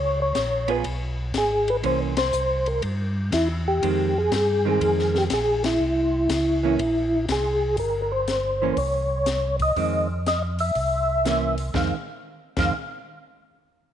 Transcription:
Already playing: tonewheel organ C#2 C#5
0.22 tonewheel organ C#5
0.35 tonewheel organ A#1, kick, snare, hi-hat pedal, ride
0.68 hollow-body jazz guitar B3 F4 G#4, tonewheel organ B4, ride
0.84 tonewheel organ B1, kick, ride
1.34 tonewheel organ G#1 G#4, kick, snare, hi-hat pedal, ride
1.68 tonewheel organ B4, ride
1.83 tonewheel organ C2 C5, hollow-body jazz guitar E3 A#3 C#4, kick, ride
2.17 tonewheel organ C5, snare, ride
2.33 tonewheel organ C2, hi-hat pedal
2.66 tonewheel organ A#4, ride
2.82 tonewheel organ G2, kick, ride
3.32 tonewheel organ E2 E4, kick, snare, hi-hat pedal, ride
3.68 tonewheel organ G4
3.82 tonewheel organ F2, hollow-body jazz guitar D#3 G#3 C4, kick, ride
4.18 tonewheel organ G#4
4.31 tonewheel organ G2, kick, snare, hi-hat pedal, ride
4.35 tonewheel organ G#4
4.65 hollow-body jazz guitar D#3 G#3 C4, tonewheel organ G#4
4.81 tonewheel organ F2, kick, ride
4.99 snare
5.15 tonewheel organ G4, snare
5.30 tonewheel organ A#1 G#4, kick, snare, hi-hat pedal, ride
5.64 tonewheel organ E4, snare, ride
5.80 tonewheel organ C2
6.29 tonewheel organ C#2, kick, snare, hi-hat pedal, ride
6.63 hollow-body jazz guitar E3 A#3 C#4
6.78 tonewheel organ A#1, kick, ride
7.28 tonewheel organ C2 G#4, kick, snare, hi-hat pedal, ride
7.77 tonewheel organ G1 A#4, kick, open hi-hat
8.02 tonewheel organ A#4
8.12 tonewheel organ C5
8.28 snare, closed hi-hat
8.62 hollow-body jazz guitar E3 A#3 C#4
8.73 tonewheel organ C2 C5, kick, open hi-hat
8.78 tonewheel organ C#5
9.26 snare, closed hi-hat
9.60 tonewheel organ D#5, kick, open hi-hat
9.76 tonewheel organ F2, hollow-body jazz guitar D#3 G#3 C4, kick, open hi-hat
10.26 tonewheel organ D#5, snare, closed hi-hat
10.59 tonewheel organ E5, open hi-hat
10.75 tonewheel organ C2, kick, open hi-hat
11.25 hollow-body jazz guitar E3 A#3 C#4, snare, closed hi-hat
11.58 open hi-hat
11.74 tonewheel organ F2 F5, hollow-body jazz guitar D#3 G#3 C4, kick, snare
12.57 tonewheel organ F2 F5, hollow-body jazz guitar D#3 G#3 C4, kick, snare, crash

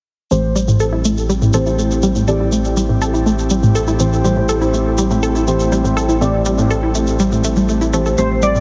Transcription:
0.31 sub bass A1, synth stab A2 E3 A3 C4 G4 C5, synth pluck A3, analog synth pad A3 C4 E4 G4, shaker
0.56 synth pluck G3, shaker
0.68 synth pluck A2, shaker
0.80 synth pluck A4, shaker
0.93 synth pluck E4
1.05 synth pluck A3, shaker
1.17 shaker
1.29 synth pluck G3, shaker
1.42 synth pluck A2, shaker
1.53 synth stab A2 E3 A3 C4 G4 C5, synth pluck A4, shaker
1.66 synth pluck E4, shaker
1.79 synth pluck A3, shaker
1.91 shaker
2.03 synth pluck G3, shaker
2.15 synth pluck A2, shaker
2.28 synth stab A2 E3 A3 C4 G4 D5, synth pluck A4, shaker
2.40 synth pluck E4
2.52 synth pluck A3, shaker
2.65 shaker
2.77 synth pluck G3, shaker
2.89 synth pluck A2
3.02 synth pluck A4, shaker
3.14 synth pluck E4, shaker
3.26 synth pluck A3, shaker
3.39 shaker
3.50 synth pluck G3, shaker
3.63 synth pluck A2, shaker
3.75 synth pluck A4, shaker
3.87 synth pluck E4, shaker
4.00 synth stab A2 E3 A3 C4 G4 C5, synth pluck A3, shaker
4.13 shaker
4.24 synth stab A2 E3 A3 C4 G4 C5, synth pluck G3, shaker
4.37 synth pluck A2
4.49 synth pluck A4, shaker
4.61 synth pluck E4, shaker
4.74 synth pluck A3, shaker
4.98 synth pluck G3, shaker
5.11 synth pluck A2, shaker
5.23 synth pluck A4, shaker
5.35 synth pluck E4, shaker
5.47 synth stab A2 E3 A3 C4 G4 C5, synth pluck A3, shaker
5.59 shaker
5.72 synth pluck G3, shaker
5.84 synth pluck A2, shaker
5.97 synth pluck A4, shaker
6.09 synth pluck E4, shaker
6.21 synth stab A2 E3 A3 C4 G4 D5, synth pluck A3, shaker
6.45 synth pluck G3, shaker
6.58 synth pluck A2, shaker
6.71 synth pluck A4, shaker
6.83 synth pluck E4
6.95 synth pluck A3, shaker
7.07 shaker
7.19 synth pluck G3, shaker
7.32 synth pluck A2, shaker
7.44 synth pluck A3, shaker
7.56 synth pluck G3, shaker
7.69 synth pluck A3, shaker
7.81 synth pluck E4, shaker
7.93 synth stab E3 A3 C4 G4 C5, synth pluck A3, shaker
8.06 synth pluck A4, shaker
8.18 sub bass A1, synth stab A2 F3 G3 C4 G4 C5, synth pluck A3, analog synth pad F4 G4, synth bell C5, soft synth lead C5, shaker
8.42 synth pluck G3, soft synth lead D5, synth bell D5, shaker
8.55 synth pluck A2, shaker

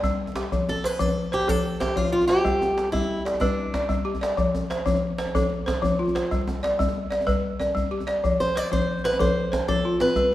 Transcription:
Already playing: balafon D5
0.03 balafon G3, djembe bass
0.27 djembe tone
0.35 balafon G4, djembe slap
0.44 djembe slap
0.52 balafon F3, djembe slap, djembe bass
0.69 steel-string acoustic guitar A4, djembe tone
0.84 steel-string acoustic guitar B4, balafon C5, djembe slap
0.99 balafon F3, steel-string acoustic guitar A4, djembe bass
1.08 djembe slap, djembe tone
1.25 djembe slap
1.32 steel-string acoustic guitar G4, balafon C5, djembe slap
1.41 djembe tone
1.48 balafon F3 A4, steel-string acoustic guitar A4, djembe bass
1.80 steel-string acoustic guitar G4, balafon C5, djembe slap, djembe tone
1.96 balafon F3, steel-string acoustic guitar F4, djembe bass
2.05 djembe slap
2.12 balafon F4, steel-string acoustic guitar F4
2.21 djembe tone
2.27 steel-string acoustic guitar G4, balafon C5, djembe slap
2.45 balafon G3, djembe slap, djembe bass
2.62 djembe tone
2.78 djembe slap
2.92 balafon G3, steel-string acoustic guitar E4, djembe bass
3.02 djembe slap, djembe tone
3.18 djembe slap
3.25 balafon D5, djembe slap
3.34 djembe tone
3.40 balafon G3 B4, steel-string acoustic guitar D4, djembe bass
3.74 balafon D5, djembe slap, djembe tone
3.89 balafon G3, djembe bass
3.98 djembe slap
4.05 balafon G4
4.15 djembe tone
4.21 balafon D5, djembe slap
4.37 balafon F3, djembe slap, djembe bass
4.55 djembe tone
4.70 balafon C5, djembe slap
4.86 balafon F3, djembe bass
4.95 djembe slap, djembe tone
5.11 djembe slap
5.18 balafon C5, djembe slap
5.27 djembe tone
5.35 balafon F3 A4, djembe bass
5.66 balafon C5, djembe slap, djembe tone
5.82 balafon F3, djembe bass
5.92 djembe slap
5.99 balafon F4
6.08 djembe tone
6.15 balafon C5, djembe slap
6.31 balafon G3, djembe slap, djembe bass
6.48 djembe tone
6.63 balafon D5, djembe slap
6.73 djembe slap
6.79 balafon G3, djembe bass
6.88 djembe tone
6.96 djembe slap
7.11 balafon D5, djembe slap
7.21 djembe tone
7.27 balafon G3 B4, djembe slap, djembe bass
7.60 balafon D5, djembe tone
7.75 balafon G3, djembe bass
7.91 balafon G4, djembe slap
8.00 djembe slap, djembe tone
8.07 balafon D5, djembe slap
8.24 balafon F3, djembe slap, djembe bass
8.40 steel-string acoustic guitar C5, djembe tone
8.56 balafon C5, steel-string acoustic guitar D5, djembe slap
8.72 balafon F3, steel-string acoustic guitar C5, djembe bass
8.81 djembe slap, djembe tone
8.97 djembe slap
9.04 steel-string acoustic guitar B4, balafon C5, djembe slap
9.13 djembe tone
9.19 balafon F3 A4, steel-string acoustic guitar C5, djembe bass
9.52 balafon C5, djembe slap, djembe tone
9.68 balafon F3, steel-string acoustic guitar A4, djembe bass
9.76 djembe slap
9.85 balafon F4
10.00 balafon C4, steel-string acoustic guitar B4, djembe slap
10.16 balafon G3, djembe slap, djembe bass

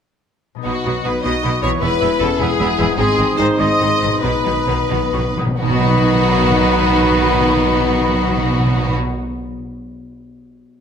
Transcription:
0.55 harp B2 B3 D#4
0.61 violin section B3 D#4 F#4, french horn section B3, viola section B3, harp B4
0.65 double bass section B1, cello section B2, viola section F#3, clarinet B3, french horn section D#4, trumpet F#4, oboe D#5, flute B5
0.84 double bass section B1, cello section B2, viola section F#3 B3, violin section B3 D#4, oboe D#5, flute B5
1.04 double bass section B1, cello section B2, viola section F#3 B3, violin section B3 D#4 B4, clarinet D#4, trumpet B4, oboe D#5, flute B5
1.23 double bass section B1, cello section B2, viola section F#3 B3, violin section B3 D#4 D#5, clarinet F#4, trumpet D#5, oboe D#5, flute B5
1.43 double bass section B1, cello section B2, viola section F#3 B3, violin section B3 D#4, oboe D#5, flute B5
1.61 double bass section B1, cello section B2, viola section F#3 B3, violin section B3 D#4 C#5, clarinet E4, trumpet C#5, oboe D#5, flute B5
1.65 harp E2
1.70 harp B3
1.74 harp E4
1.79 double bass section E1, cello section E2, viola section E3 G#3, violin section B3 E4 B4, harp B4, trumpet B4, oboe E5, flute B5
1.83 clarinet E4, french horn section E4
2.01 double bass section E1, cello section E2, viola section E3 G#3, violin section B3 E4, oboe E5, flute B5
2.20 double bass section E1, cello section E2, viola section E3 G#3, violin section B3 E4 A4, clarinet C#4, trumpet A4, oboe E5, flute B5
2.39 double bass section E1, cello section E2, viola section E3 G#3, violin section B3 E4 G#4, clarinet B3, trumpet G#4, oboe E5, flute B5
2.60 double bass section E1, cello section E2, viola section E3 G#3, violin section B3 E4, oboe E5, flute B5
2.78 double bass section E1, cello section E2, harp G#2, viola section E3 G#3, violin section B3 E4, oboe E5, flute B5
2.84 harp C4
2.89 harp D#4
2.93 violin section C4 D#4, harp G#4
2.97 double bass section G#1, cello section G#2, viola section D#3 G#3, french horn section C4 D#4, clarinet C4, violin section G#4, trumpet G#4, oboe D#5, flute C6
3.17 double bass section G#1, cello section G#2, viola section D#3 G#3, violin section C4 D#4
3.37 double bass section G#1, cello section G#2, viola section D#3 G#3, violin section C4 D#4 C5, clarinet D#4, trumpet C5
3.58 double bass section G#1, cello section G#2, viola section D#3 G#3, violin section C4 D#4 D#5, clarinet G#4, oboe D#5, trumpet D#5, flute C6
3.80 double bass section G#1, cello section G#2, viola section D#3 G#3, violin section C4 D#4
4.00 double bass section G#1, cello section G#2, viola section D#3 G#3, violin section C4 D#4
4.04 harp B2
4.09 harp B3
4.13 harp D#4
4.18 harp F#4
4.22 double bass section B1, cello section B2, viola section D#3 F#3, violin section B3 D#4 B4, french horn section B3, clarinet D#4, trumpet B4, oboe D#5, flute B5
4.40 timpani B2, violin section B3 D#4
4.45 double bass section B1, cello section B2, timpani B2, viola section D#3 F#3
4.57 timpani B2
4.65 double bass section B1, timpani B2, cello section B2, viola section D#3 F#3, violin section B3 D#4
4.75 timpani B2
4.83 timpani B2
4.90 double bass section B1, cello section B2, timpani B2, viola section D#3 F#3, violin section B3 D#4, flute B5
5.00 timpani B2
5.09 timpani B2, violin section B3
5.13 double bass section B1, cello section B2, viola section D#3 F#3, violin section D#4, flute C#6
5.19 timpani B2
5.28 timpani B2
5.37 double bass section B1, timpani B2, cello section B2, viola section D#3 F#3, violin section B3 D#4, flute D#6
5.47 timpani B2
5.60 double bass section B1, harp B2, cello section B2, timpani B2, viola section D#3 F#3, french horn section B3 D#4, violin section B3 D#4 F#4, clarinet D#4, trumpet B4, oboe D#5, flute B5
5.69 timpani B2, harp B3
5.76 timpani B2, harp D#4
5.83 timpani B2, harp F#4
5.90 timpani B2, harp D#5
6.00 timpani B2
6.07 timpani B2
6.15 timpani B2
6.22 timpani B2
6.29 timpani B2
6.36 timpani B2
6.44 timpani B2
6.51 timpani B2
6.59 timpani B2
6.67 timpani B2
6.74 timpani B2
6.82 timpani B2
6.90 timpani B2
6.97 timpani B2
7.04 timpani B2
7.12 timpani B2
7.19 timpani B2
7.27 timpani B2
7.34 timpani B2
7.41 timpani B2
7.50 timpani B2
7.57 timpani B2
7.64 timpani B2
7.72 timpani B2
7.79 timpani B2
7.87 timpani B2
7.94 timpani B2
8.01 timpani B2
8.09 timpani B2
8.16 timpani B2
8.23 timpani B2
8.31 timpani B2
8.38 timpani B2
8.45 timpani B2
8.52 timpani B2
8.60 timpani B2
8.67 timpani B2
8.74 timpani B2
8.81 timpani B2
8.89 timpani B2

